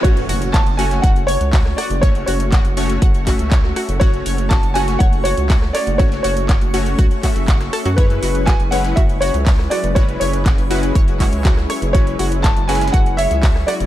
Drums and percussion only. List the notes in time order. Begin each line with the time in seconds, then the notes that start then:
0.04 kick, closed hi-hat
0.17 closed hi-hat
0.29 closed hi-hat, open hi-hat
0.42 closed hi-hat
0.54 kick, snare, clap, closed hi-hat
0.66 closed hi-hat
0.79 closed hi-hat, open hi-hat
0.91 snare, closed hi-hat
1.04 kick, closed hi-hat
1.16 closed hi-hat
1.28 closed hi-hat, open hi-hat
1.41 closed hi-hat
1.53 kick, snare, clap, closed hi-hat, open hi-hat
1.66 cross-stick, snare
1.78 cross-stick, closed hi-hat, open hi-hat
1.91 closed hi-hat
2.03 kick, closed hi-hat
2.15 closed hi-hat
2.28 closed hi-hat, open hi-hat
2.40 closed hi-hat
2.52 kick, snare, clap, closed hi-hat
2.65 closed hi-hat
2.77 snare, closed hi-hat, open hi-hat
2.90 closed hi-hat
3.02 kick, closed hi-hat
3.14 closed hi-hat
3.27 kick, clap, closed hi-hat, open hi-hat
3.39 closed hi-hat
3.51 kick, snare, clap, closed hi-hat
3.64 cross-stick, snare
3.76 cross-stick, closed hi-hat, open hi-hat
3.89 closed hi-hat
4.01 kick, closed hi-hat
4.14 closed hi-hat
4.26 closed hi-hat, open hi-hat
4.38 closed hi-hat
4.51 kick, snare, clap, closed hi-hat
4.63 closed hi-hat
4.75 closed hi-hat, open hi-hat
4.88 snare, closed hi-hat
5.00 kick, closed hi-hat
5.13 closed hi-hat
5.25 closed hi-hat, open hi-hat
5.37 closed hi-hat
5.50 kick, snare, clap, closed hi-hat, open hi-hat
5.62 cross-stick, snare
5.75 cross-stick, snare, closed hi-hat, open hi-hat
5.87 closed hi-hat
5.99 kick, closed hi-hat
6.12 snare, closed hi-hat
6.24 closed hi-hat, open hi-hat
6.37 closed hi-hat
6.49 kick, snare, clap, closed hi-hat
6.61 closed hi-hat
6.74 snare, closed hi-hat, open hi-hat
6.86 closed hi-hat
6.99 kick, closed hi-hat
7.11 closed hi-hat
7.23 kick, clap, closed hi-hat, open hi-hat
7.36 closed hi-hat
7.48 kick, snare, clap, closed hi-hat
7.61 cross-stick, snare, closed hi-hat
7.73 cross-stick, closed hi-hat, open hi-hat
7.85 closed hi-hat
7.98 kick, closed hi-hat
8.10 closed hi-hat
8.23 closed hi-hat, open hi-hat
8.35 closed hi-hat
8.47 kick, snare, clap, closed hi-hat
8.60 closed hi-hat
8.72 closed hi-hat, open hi-hat
8.85 snare, closed hi-hat
8.97 kick, closed hi-hat
9.09 closed hi-hat
9.22 closed hi-hat, open hi-hat
9.34 closed hi-hat
9.46 kick, snare, clap, closed hi-hat, open hi-hat
9.59 cross-stick, snare
9.71 cross-stick, closed hi-hat, open hi-hat
9.84 closed hi-hat
9.96 kick, closed hi-hat
10.09 closed hi-hat
10.21 closed hi-hat, open hi-hat
10.33 closed hi-hat
10.46 kick, snare, clap, closed hi-hat
10.58 closed hi-hat
10.71 snare, closed hi-hat, open hi-hat
10.83 closed hi-hat
10.95 kick, closed hi-hat
11.08 closed hi-hat
11.20 kick, clap, closed hi-hat, open hi-hat
11.33 closed hi-hat
11.45 kick, snare, clap, closed hi-hat
11.57 cross-stick, snare
11.70 cross-stick, closed hi-hat, open hi-hat
11.82 closed hi-hat
11.95 kick, closed hi-hat
12.07 closed hi-hat
12.19 closed hi-hat, open hi-hat
12.32 closed hi-hat
12.44 kick, snare, clap, closed hi-hat
12.57 closed hi-hat
12.69 snare, closed hi-hat, open hi-hat
12.75 snare, closed hi-hat
12.81 snare, closed hi-hat
12.88 snare, closed hi-hat
12.94 kick, closed hi-hat
13.06 closed hi-hat
13.18 closed hi-hat, open hi-hat
13.31 closed hi-hat
13.43 kick, snare, clap, closed hi-hat, open hi-hat
13.56 cross-stick, snare
13.68 cross-stick, closed hi-hat, open hi-hat
13.80 closed hi-hat